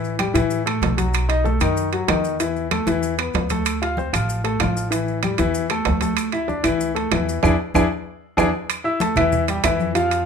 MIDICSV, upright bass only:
0, 0, Header, 1, 2, 480
1, 0, Start_track
1, 0, Tempo, 314795
1, 1744, Time_signature, 4, 2, 24, 8
1, 15638, End_track
2, 0, Start_track
2, 0, Title_t, "Upright bass"
2, 0, Program_c, 0, 32
2, 0, Note_on_c, 0, 33, 89
2, 453, Note_off_c, 0, 33, 0
2, 527, Note_on_c, 0, 45, 90
2, 1205, Note_off_c, 0, 45, 0
2, 1245, Note_on_c, 0, 35, 99
2, 2370, Note_off_c, 0, 35, 0
2, 2456, Note_on_c, 0, 42, 80
2, 3130, Note_off_c, 0, 42, 0
2, 3175, Note_on_c, 0, 40, 84
2, 4295, Note_off_c, 0, 40, 0
2, 4375, Note_on_c, 0, 40, 83
2, 5049, Note_off_c, 0, 40, 0
2, 5097, Note_on_c, 0, 38, 90
2, 6217, Note_off_c, 0, 38, 0
2, 6300, Note_on_c, 0, 33, 88
2, 6972, Note_off_c, 0, 33, 0
2, 7028, Note_on_c, 0, 33, 95
2, 8142, Note_off_c, 0, 33, 0
2, 8223, Note_on_c, 0, 40, 83
2, 8894, Note_off_c, 0, 40, 0
2, 8939, Note_on_c, 0, 38, 89
2, 10058, Note_off_c, 0, 38, 0
2, 10128, Note_on_c, 0, 38, 83
2, 10807, Note_off_c, 0, 38, 0
2, 10848, Note_on_c, 0, 40, 91
2, 11303, Note_off_c, 0, 40, 0
2, 11336, Note_on_c, 0, 40, 87
2, 11520, Note_off_c, 0, 40, 0
2, 11822, Note_on_c, 0, 40, 96
2, 12003, Note_off_c, 0, 40, 0
2, 12772, Note_on_c, 0, 40, 99
2, 12957, Note_off_c, 0, 40, 0
2, 13977, Note_on_c, 0, 40, 88
2, 14649, Note_off_c, 0, 40, 0
2, 14700, Note_on_c, 0, 41, 99
2, 15638, Note_off_c, 0, 41, 0
2, 15638, End_track
0, 0, End_of_file